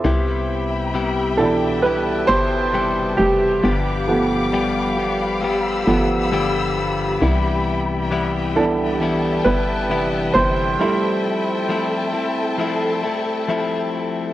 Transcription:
Already playing: C5 E5
0.04 C2 C3 G3 B3 E4 G4 E5 G5 B5
0.94 C3 G3 B3 E4 G4
1.37 B2 E3 D4 E4 G4 A4
1.42 B3
1.82 G3 B3 E4 G4 B4 A5
2.27 G1 E4 G4 C5
2.31 B3
2.73 C3 G3 B3 E4 G4
3.17 F1 G4
3.63 G1 G2 D3 F3 G3 B3 G4 F5 B5 D6
4.08 F3 A3 B3
4.52 G2 D3 F3 G3 B3 G4
4.97 F3 G3 B3 G4
5.42 F3 G3 B3 G4 E6
5.87 G1 F3 G3 A3 B3 G4
6.31 G2 D3 F3 G3 B3 G4
7.21 C2 C3 E3 G3 B3 E4 E5 G5
8.11 C3 E3 G3 B3 E4
8.56 E3 G3 B3 D4 E4 A4
9.00 E3 G3 B3 E4 A5
9.45 G1 G3 B3 E4 B4
9.90 C3 E3 G3 B3 E4
10.34 G1 C5
10.79 F3 G3 A3 C4 E4 A4 A5
11.69 F3 A3 C4 E4
12.13 A3 C4 E4
12.58 F3 A3 C4 E4
13.03 A3 C4 E4
13.48 F3 A3 C4 E4

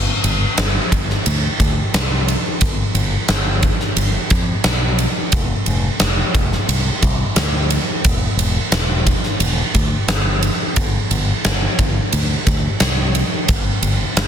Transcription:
Already playing: G1
0.24 G1, ride
0.58 G1, snare, ride
0.92 G1, kick, ride
1.10 snare
1.26 D2, ride
1.59 D2, kick, ride
1.94 C2, snare, ride
2.28 ride
2.61 G1, kick, ride
2.94 G1, ride
3.28 G1, snare, ride
3.62 kick, ride
3.80 snare
3.97 G1, ride
4.30 F2, kick, ride
4.64 B1, snare, ride
4.99 ride
5.32 F1, kick, ride
5.66 F1, ride
6.00 F1, snare, ride
6.35 F1, kick, ride
6.52 snare
6.68 C2, ride
7.02 C2, kick, ride
7.36 D2, snare, ride
7.70 ride
8.04 E1, kick, ride
8.37 E1, ride
8.72 E1, snare, ride
9.07 kick, ride
9.23 snare
9.40 E1, ride
9.74 D2, kick, ride
10.07 G1, snare, ride
10.43 ride
10.76 G1, kick, ride
11.11 G1, ride
11.45 G1, snare, ride
11.79 G1, kick, ride
12.12 D2, ride
12.47 D2, kick, ride
12.80 C2, snare, ride
13.15 ride
13.48 G1, kick, ride
13.82 G1, ride
14.17 G1, snare, ride

